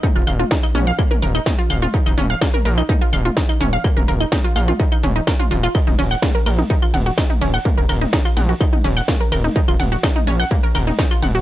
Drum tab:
RD |----------------|----------------|----------------|x-x-x-x-x-x-x-x-|
HH |--o---o---o---o-|--o---o---o---o-|--o---o---o---o-|--o---o---o---o-|
SH |xxxxxxxxxxxxxxxx|xxxxxxxxxxxxxxxx|xxxxxxxxxxxxxxxx|xxxxxxxxxxxxxxxx|
CL |--x--x--x--x--x-|-x--x--x--x--x--|x--x--x--x--x--x|x--x--x--x--x--x|
SD |----o-------o---|----o-------o---|----o-------o---|----o-------o---|
T2 |o--o--o--o--o--o|--o--o--o--o--o-|-o--o--o--o--o--|-o--o--o--o--o--|
BD |o---o---o---o---|o---o---o---o---|o---o---o---o---|o---o---o---o---|

RD |x-x-x-x-x-x-x-x-|x-x-x-x-x-x-x-x-|
HH |--o---o---o---o-|--o---o---o---o-|
SH |xxxxxxxxxxxxxxxx|xxxxxxxxxxxxxxxx|
CL |--x--x--x--x--x-|-x--x--x--x--x--|
SD |----o-------o---|----o-------o---|
T2 |o--o--o--o--o--o|--o--o--o--o--o-|
BD |o---o---o---o---|o---o---o---o---|